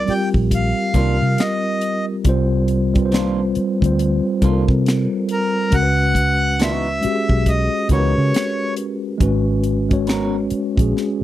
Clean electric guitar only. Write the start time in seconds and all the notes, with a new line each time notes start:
0.94 D#3 A#3 D4 F4
3.12 D#3 A#3 D4 F4
4.42 D#3 A#3 D4 F4
6.60 D#3 A#3 D4 F4
6.71 E3 B3 D#4 F#4
7.91 E3 B3 D#4 F#4
10.08 B3 C#4 F#4 A#4